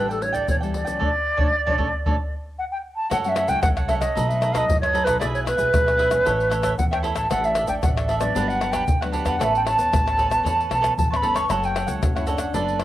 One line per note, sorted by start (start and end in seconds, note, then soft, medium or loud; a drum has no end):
0.00 0.40 A1 medium
0.00 0.46 A2 soft
0.00 0.18 G3 soft
0.00 0.18 D4 medium
0.00 0.18 E4 soft
0.09 0.24 A4 medium
0.09 0.20 A4 soft
0.09 0.20 D5 soft
0.09 0.21 G5 soft
0.09 pandeiro soft
0.09 shaker soft
0.20 0.57 G3 soft
0.20 0.57 D4 soft
0.20 0.58 E4 soft
0.20 0.35 C#5 medium
0.20 muted cavaquinho stroke soft
0.20 pandeiro medium
0.33 0.60 A4 soft
0.33 0.48 D5 medium
0.33 0.60 D5 medium
0.33 0.59 G5 medium
0.33 pandeiro soft
0.33 shaker medium
0.33 surdo soft
0.48 0.82 E2 medium
0.48 0.99 E3 soft
0.48 0.56 C#5 medium
0.48 pandeiro medium
0.48 shaker medium
0.48 surdo medium
0.61 0.84 G3 medium
0.61 0.84 D4 soft
0.61 0.84 E4 soft
0.61 0.86 A4 soft
0.61 0.84 D5 soft
0.61 0.83 G5 soft
0.61 pandeiro soft
0.61 shaker soft
0.74 2.34 D5 loud
0.74 pandeiro medium
0.74 surdo soft
0.85 0.98 C#2 medium
0.85 1.00 F#3 soft
0.85 1.00 A3 medium
0.85 1.01 C#4 medium
0.85 0.98 A4 soft
0.85 0.98 D5 soft
0.85 0.98 G5 soft
0.85 pandeiro soft
0.85 shaker medium
0.85 surdo soft
0.99 1.10 D2 medium
0.99 1.10 A3 medium
0.99 1.10 C#4 medium
0.99 1.10 D4 medium
0.99 1.09 A4 medium
0.99 1.09 C#5 medium
0.99 1.09 D5 medium
0.99 surdo medium
1.37 1.49 D2 medium
1.37 1.48 A3 medium
1.37 1.48 C#4 medium
1.37 1.48 D4 medium
1.37 1.47 A4 medium
1.37 1.47 C#5 medium
1.37 1.47 D5 medium
1.37 surdo medium
1.66 1.76 D2 medium
1.66 1.76 A3 medium
1.66 1.76 C#4 medium
1.66 1.76 D4 medium
1.66 1.75 A4 medium
1.66 1.75 C#5 medium
1.66 1.75 D5 medium
1.66 surdo medium
1.78 1.89 D2 medium
1.78 1.88 A3 medium
1.78 1.88 C#4 medium
1.78 1.88 D4 medium
1.78 1.87 A4 medium
1.78 1.87 C#5 medium
1.78 1.87 D5 medium
1.78 surdo medium
2.06 2.16 D2 medium
2.06 2.15 A3 medium
2.06 2.15 C#4 medium
2.06 2.15 D4 medium
2.06 2.14 A4 medium
2.06 2.15 C#5 medium
2.06 2.15 D5 medium
2.06 surdo medium
2.58 2.64 F#5 medium
2.71 2.77 G5 medium
2.96 3.09 A5 medium
3.10 3.44 F#2 medium
3.10 3.61 F#2 soft
3.10 3.19 F#3 soft
3.10 3.20 A3 medium
3.10 3.20 C#4 medium
3.10 3.35 F#4 medium
3.10 3.36 A4 medium
3.10 3.37 C#5 medium
3.10 3.17 F#5 medium
3.10 3.37 F#5 medium
3.10 pandeiro medium
3.10 tamborim medium
3.10 shaker medium
3.10 surdo medium
3.24 3.47 F#3 medium
3.24 3.47 A3 medium
3.24 3.47 C#4 medium
3.24 3.30 F#5 medium
3.24 pandeiro soft
3.24 shaker soft
3.29 3.50 E5 medium
3.36 3.49 F#4 soft
3.36 3.49 A4 soft
3.36 3.49 C#5 medium
3.36 3.47 F#5 medium
3.36 pandeiro medium
3.36 tamborim medium
3.36 shaker medium
3.48 3.60 C#2 medium
3.48 3.85 F#3 medium
3.48 3.85 A3 medium
3.48 3.85 C#4 medium
3.48 3.76 A4 soft
3.48 3.75 C#5 soft
3.48 3.75 F#5 soft
3.48 3.62 G5 medium
3.48 pandeiro medium
3.48 shaker medium
3.48 surdo soft
3.62 4.08 C2 medium
3.62 3.68 F#5 medium
3.62 pandeiro medium
3.62 tamborim medium
3.62 shaker medium
3.62 surdo medium
3.77 3.87 A4 soft
3.77 3.88 C#5 soft
3.77 3.89 F#5 soft
3.77 pandeiro soft
3.77 tamborim medium
3.77 shaker soft
3.88 4.06 F#3 medium
3.88 4.06 A3 soft
3.88 4.07 C#4 medium
3.88 4.01 F#4 medium
3.88 4.01 A4 medium
3.88 4.00 C#5 medium
3.88 3.94 E5 medium
3.88 3.99 F#5 medium
3.88 pandeiro medium
3.88 surdo soft
4.00 4.15 A4 soft
4.00 4.14 C#5 soft
4.00 4.29 D#5 medium
4.00 4.14 F#5 soft
4.00 pandeiro medium
4.00 tamborim medium
4.00 shaker medium
4.15 4.61 B1 loud
4.15 4.66 B2 medium
4.15 4.24 F#3 medium
4.15 4.25 A3 medium
4.15 4.39 D#4 medium
4.15 4.25 D#4 medium
4.15 4.40 A4 medium
4.15 4.41 B4 medium
4.15 4.42 D#5 medium
4.15 pandeiro medium
4.15 shaker medium
4.15 surdo medium
4.28 4.52 F#3 medium
4.28 4.52 A3 medium
4.28 4.54 E5 medium
4.28 pandeiro soft
4.28 shaker soft
4.32 4.53 D#4 medium
4.41 4.52 D#4 soft
4.41 4.53 A4 soft
4.41 4.53 B4 medium
4.41 4.54 D#5 soft
4.41 pandeiro medium
4.41 tamborim medium
4.41 shaker medium
4.52 4.90 F#3 medium
4.52 4.90 A3 medium
4.52 4.64 D#4 medium
4.52 4.90 D#4 medium
4.52 4.64 A4 medium
4.52 4.64 B4 medium
4.52 4.64 D#5 medium
4.52 4.58 F5 medium
4.52 pandeiro medium
4.52 tamborim medium
4.52 shaker medium
4.52 surdo soft
4.57 4.80 D#5 medium
4.68 5.02 F#2 medium
4.68 5.19 F#2 medium
4.68 pandeiro medium
4.68 shaker medium
4.68 surdo medium
4.80 4.93 A4 soft
4.80 4.94 B4 soft
4.80 5.06 C#5 medium
4.80 4.94 D#5 soft
4.80 pandeiro soft
4.80 tamborim medium
4.80 shaker soft
4.93 5.19 F#3 medium
4.93 5.19 A3 medium
4.93 5.04 D#4 medium
4.93 5.20 D#4 medium
4.93 5.04 A4 medium
4.93 5.05 B4 medium
4.93 5.05 D#5 medium
4.93 pandeiro medium
5.04 5.18 B1 medium
5.04 5.15 D#4 medium
5.04 5.16 A4 medium
5.04 5.19 B4 medium
5.04 5.16 B4 medium
5.04 5.16 D#5 medium
5.04 pandeiro medium
5.04 tamborim medium
5.04 shaker medium
5.04 surdo soft
5.19 5.54 B1 medium
5.19 5.71 B2 medium
5.19 5.46 B3 medium
5.19 5.44 E4 medium
5.19 5.46 E4 medium
5.19 5.44 G#4 medium
5.19 5.46 G#4 medium
5.19 5.45 B4 medium
5.19 5.26 D5 medium
5.19 5.46 E5 medium
5.19 pandeiro medium
5.19 tamborim medium
5.19 shaker medium
5.19 surdo soft
5.34 5.40 C#5 medium
5.34 pandeiro soft
5.34 shaker soft
5.45 5.58 E4 soft
5.45 5.58 G#4 medium
5.45 5.57 B4 medium
5.45 6.74 B4 loud
5.45 5.56 E5 soft
5.45 pandeiro medium
5.45 tamborim medium
5.45 shaker medium
5.57 5.70 B1 medium
5.57 5.68 B3 medium
5.57 5.68 E4 medium
5.57 5.85 G#4 soft
5.57 5.69 G#4 medium
5.57 5.84 B4 soft
5.57 5.84 E5 soft
5.57 pandeiro medium
5.57 shaker medium
5.57 surdo soft
5.73 6.18 B1 medium
5.73 6.23 B2 medium
5.73 5.98 B3 medium
5.73 5.98 E4 medium
5.73 5.99 G#4 medium
5.73 pandeiro medium
5.73 tamborim medium
5.73 shaker medium
5.73 surdo loud
5.86 5.97 G#4 soft
5.86 5.98 B4 soft
5.86 5.98 E5 soft
5.86 pandeiro soft
5.86 tamborim medium
5.86 shaker soft
5.97 6.11 E4 medium
5.97 6.11 G#4 medium
5.97 6.10 B4 medium
5.97 6.09 E5 medium
5.97 pandeiro medium
5.97 surdo soft
6.10 6.47 E3 medium
6.10 6.47 A3 medium
6.10 6.47 C#4 medium
6.10 6.25 G#4 soft
6.10 6.24 B4 soft
6.10 6.24 E5 soft
6.10 pandeiro medium
6.10 tamborim medium
6.10 shaker medium
6.25 6.71 A1 medium
6.25 6.76 A2 medium
6.25 6.48 E4 medium
6.25 6.49 A4 medium
6.25 6.50 C#5 medium
6.25 6.50 E5 medium
6.25 pandeiro medium
6.25 shaker medium
6.25 surdo medium
6.40 pandeiro soft
6.40 shaker soft
6.49 6.76 E3 soft
6.49 6.87 A3 medium
6.49 6.87 C#4 medium
6.49 6.61 E4 soft
6.49 6.62 A4 medium
6.49 6.62 C#5 medium
6.49 6.63 E5 medium
6.49 pandeiro medium
6.49 tamborim medium
6.49 shaker medium
6.62 6.73 E4 medium
6.62 6.73 A4 medium
6.62 6.73 C#5 medium
6.62 6.73 E5 medium
6.62 pandeiro medium
6.62 tamborim medium
6.62 shaker medium
6.62 surdo soft
6.77 7.12 E2 medium
6.77 6.90 E3 medium
6.77 6.84 F#5 medium
6.77 pandeiro medium
6.77 shaker medium
6.77 surdo medium
6.91 7.26 E3 medium
6.91 7.27 A3 medium
6.91 7.27 C#4 medium
6.91 7.02 A4 soft
6.91 7.03 C#5 soft
6.91 7.03 E5 medium
6.91 6.98 G5 medium
6.91 pandeiro soft
6.91 tamborim medium
6.91 shaker soft
7.03 7.14 E4 medium
7.03 7.14 A4 medium
7.03 7.15 C#5 medium
7.03 7.15 E5 medium
7.03 pandeiro medium
7.15 7.27 A1 medium
7.15 7.25 E4 medium
7.15 7.25 A4 medium
7.15 7.26 C#5 medium
7.15 7.26 E5 medium
7.15 7.29 A5 medium
7.15 pandeiro medium
7.15 tamborim medium
7.15 shaker medium
7.15 surdo soft
7.30 7.64 A1 medium
7.30 7.81 A2 soft
7.30 7.66 E3 medium
7.30 7.66 A3 soft
7.30 7.54 D4 medium
7.30 7.66 D4 medium
7.30 7.55 A4 medium
7.30 7.56 D5 medium
7.30 7.57 E5 medium
7.30 7.46 F#5 medium
7.30 pandeiro medium
7.30 tamborim medium
7.30 shaker medium
7.30 surdo medium
7.44 7.68 E5 medium
7.44 pandeiro soft
7.44 shaker soft
7.55 7.68 D4 medium
7.55 7.69 A4 soft
7.55 7.68 D5 medium
7.55 7.67 E5 soft
7.55 pandeiro medium
7.55 tamborim medium
7.55 shaker medium
7.68 7.80 A1 medium
7.68 7.78 E3 medium
7.68 7.78 A3 medium
7.68 7.78 D4 medium
7.68 7.95 A4 soft
7.68 7.95 D5 soft
7.68 7.94 E5 soft
7.68 7.74 G5 medium
7.68 pandeiro medium
7.68 shaker medium
7.68 surdo soft
7.83 8.28 A1 medium
7.83 8.33 A2 medium
7.83 8.08 E3 medium
7.83 8.09 A3 soft
7.83 8.09 D4 medium
7.83 7.89 F#5 medium
7.83 pandeiro medium
7.83 tamborim medium
7.83 shaker medium
7.83 surdo medium
7.96 8.08 A4 soft
7.96 8.09 D5 soft
7.96 8.08 E5 soft
7.96 pandeiro soft
7.96 tamborim medium
7.96 shaker soft
8.07 8.21 D4 medium
8.07 8.21 A4 medium
8.07 8.20 D5 medium
8.07 8.18 E5 medium
8.07 8.19 E5 medium
8.07 pandeiro medium
8.07 surdo soft
8.19 8.57 F#3 medium
8.19 8.57 B3 medium
8.19 8.57 D4 medium
8.19 8.34 A4 soft
8.19 8.50 D5 medium
8.19 8.34 D5 soft
8.19 8.33 E5 soft
8.19 pandeiro medium
8.19 tamborim medium
8.19 shaker medium
8.35 8.80 G1 medium
8.35 8.85 G2 medium
8.35 8.59 D4 medium
8.35 8.60 G4 medium
8.35 8.61 B4 medium
8.35 8.61 F#5 medium
8.35 pandeiro medium
8.35 shaker medium
8.35 surdo medium
8.48 8.73 F#5 medium
8.48 pandeiro soft
8.48 shaker soft
8.60 8.86 F#3 medium
8.60 8.86 B3 soft
8.60 8.71 D4 medium
8.60 8.86 D4 medium
8.60 8.72 G4 medium
8.60 8.72 B4 medium
8.60 8.73 F#5 medium
8.60 pandeiro medium
8.60 tamborim medium
8.71 8.83 D4 medium
8.71 8.83 G4 medium
8.71 8.83 B4 medium
8.71 8.83 F#5 medium
8.71 8.99 G5 medium
8.71 pandeiro medium
8.71 tamborim medium
8.71 shaker medium
8.71 surdo soft
8.88 9.22 D2 medium
8.88 9.38 D3 medium
8.88 pandeiro medium
8.88 shaker medium
8.88 surdo medium
9.01 9.37 F#3 medium
9.01 9.37 B3 medium
9.01 9.37 D4 medium
9.01 9.12 G4 soft
9.01 9.13 B4 soft
9.01 9.13 F#5 soft
9.01 pandeiro soft
9.01 tamborim medium
9.01 shaker soft
9.12 9.24 D4 medium
9.12 9.24 G4 medium
9.12 9.25 B4 medium
9.12 9.25 F#5 medium
9.12 pandeiro medium
9.12 surdo soft
9.25 9.37 E2 medium
9.25 9.35 D4 medium
9.25 9.35 G4 medium
9.25 9.36 B4 medium
9.25 9.36 F#5 medium
9.25 9.45 F#5 medium
9.25 pandeiro medium
9.25 tamborim medium
9.25 shaker medium
9.25 surdo soft
9.39 9.73 A1 medium
9.39 9.90 A2 medium
9.39 9.89 E3 medium
9.39 9.89 B3 medium
9.39 9.89 C#4 medium
9.39 9.64 A4 medium
9.39 9.65 B4 medium
9.39 9.64 C#5 medium
9.39 9.55 E5 medium
9.39 9.66 A5 medium
9.39 pandeiro medium
9.39 tamborim medium
9.39 shaker medium
9.39 surdo medium
9.55 9.62 G5 medium
9.55 pandeiro soft
9.55 shaker soft
9.65 9.78 A4 soft
9.65 9.77 B4 soft
9.65 9.78 C#5 soft
9.65 9.75 A5 medium
9.65 10.94 A5 loud
9.65 pandeiro medium
9.65 tamborim medium
9.76 9.90 E2 medium
9.76 10.04 B4 soft
9.76 10.04 C#5 soft
9.76 10.03 A5 soft
9.76 pandeiro medium
9.76 shaker medium
9.76 surdo soft
9.93 10.37 A1 medium
9.93 10.29 E3 soft
9.93 10.28 B3 soft
9.93 10.28 C#4 medium
9.93 pandeiro medium
9.93 tamborim medium
9.93 shaker medium
9.93 surdo loud
10.06 10.18 B4 soft
10.06 10.17 C#5 soft
10.06 10.18 A5 medium
10.06 pandeiro soft
10.06 tamborim medium
10.06 shaker soft
10.17 10.30 A4 medium
10.17 10.28 B4 medium
10.17 10.30 C#5 medium
10.17 10.27 A5 medium
10.17 pandeiro medium
10.17 surdo soft
10.29 10.66 E3 medium
10.29 10.66 B3 medium
10.29 10.67 C#4 medium
10.29 10.43 B4 soft
10.29 10.43 C#5 soft
10.29 10.42 A5 medium
10.29 pandeiro medium
10.29 tamborim medium
10.29 shaker medium
10.43 10.67 E2 medium
10.43 10.95 A2 medium
10.43 10.68 A4 medium
10.43 10.70 B4 medium
10.43 10.69 C#5 medium
10.43 10.70 A5 medium
10.43 pandeiro medium
10.43 shaker medium
10.43 surdo medium
10.61 pandeiro soft
10.61 shaker soft
10.69 10.94 B1 medium
10.69 10.97 E3 soft
10.69 11.06 B3 soft
10.69 11.06 C#4 soft
10.69 10.80 A4 soft
10.69 10.81 B4 soft
10.69 10.81 C#5 soft
10.69 10.81 A5 medium
10.69 pandeiro medium
10.69 tamborim medium
10.81 10.92 A4 medium
10.81 10.92 B4 medium
10.81 10.92 C#5 medium
10.81 10.92 A5 medium
10.81 pandeiro medium
10.81 tamborim medium
10.81 shaker medium
10.81 surdo soft
10.97 11.21 A1 medium
10.97 11.11 E3 medium
10.97 11.09 A5 medium
10.97 pandeiro medium
10.97 shaker medium
10.97 surdo medium
11.10 11.46 E3 medium
11.10 11.46 B3 medium
11.10 11.47 C#4 medium
11.10 11.22 B4 soft
11.10 11.22 C#5 soft
11.10 11.22 A5 soft
11.10 11.17 C#6 medium
11.10 pandeiro soft
11.10 tamborim medium
11.10 shaker soft
11.16 11.37 B5 medium
11.22 11.46 G1 medium
11.22 11.33 A4 medium
11.22 11.34 B4 medium
11.22 11.33 C#5 medium
11.22 11.34 A5 medium
11.22 pandeiro medium
11.22 surdo soft
11.34 11.44 A4 medium
11.34 11.45 B4 medium
11.34 11.44 C#5 medium
11.34 11.45 A5 medium
11.34 11.52 C#6 medium
11.34 pandeiro medium
11.34 tamborim medium
11.34 shaker medium
11.34 surdo soft
11.49 11.83 F#1 medium
11.49 11.99 F#3 medium
11.49 11.85 A3 medium
11.49 11.85 C#4 medium
11.49 11.74 F#4 medium
11.49 11.74 A4 medium
11.49 11.85 A4 medium
11.49 11.75 C#5 medium
11.49 11.76 F#5 medium
11.49 11.66 A5 medium
11.49 pandeiro medium
11.49 tamborim medium
11.49 shaker medium
11.49 surdo medium
11.63 11.90 G5 medium
11.63 pandeiro soft
11.63 shaker soft
11.75 11.87 F#4 soft
11.75 11.88 A4 soft
11.75 11.86 C#5 soft
11.75 11.85 F#5 medium
11.75 pandeiro medium
11.75 tamborim medium
11.87 11.99 C#2 medium
11.87 12.10 A3 medium
11.87 12.10 C#4 medium
11.87 12.11 A4 medium
11.87 12.14 A4 soft
11.87 12.13 C#5 soft
11.87 12.13 F#5 soft
11.87 pandeiro medium
11.87 shaker medium
11.87 surdo soft
12.02 12.47 F#1 medium
12.02 12.52 C#3 soft
12.02 12.18 F#4 medium
12.02 pandeiro medium
12.02 tamborim medium
12.02 shaker medium
12.02 surdo loud
12.15 12.51 A3 medium
12.15 12.51 C#4 medium
12.15 12.27 E4 medium
12.15 12.51 A4 medium
12.15 12.26 A4 soft
12.15 12.26 C#5 soft
12.15 12.27 F#5 soft
12.15 pandeiro soft
12.15 tamborim medium
12.15 shaker soft
12.26 12.84 D4 medium
12.26 12.39 F#4 medium
12.26 12.40 A4 medium
12.26 12.39 C#5 medium
12.26 12.37 F#5 medium
12.26 pandeiro medium
12.26 shaker medium
12.26 surdo soft
12.38 12.53 A4 soft
12.38 12.52 C#5 soft
12.38 12.52 F#5 soft
12.38 pandeiro medium
12.38 tamborim medium
12.38 shaker medium
12.54 12.84 F#1 medium
12.54 12.84 F#3 medium
12.54 12.79 B3 soft
12.54 12.78 D4 medium
12.54 12.79 D4 medium
12.54 12.79 A4 medium
12.54 12.80 A4 medium
12.54 12.79 B4 medium
12.54 12.80 D5 medium
12.54 pandeiro medium
12.54 shaker medium
12.54 surdo medium
12.68 pandeiro soft
12.68 shaker soft
12.79 12.84 D4 medium
12.79 12.84 A4 soft
12.79 12.84 B4 soft
12.79 pandeiro medium
12.79 tamborim medium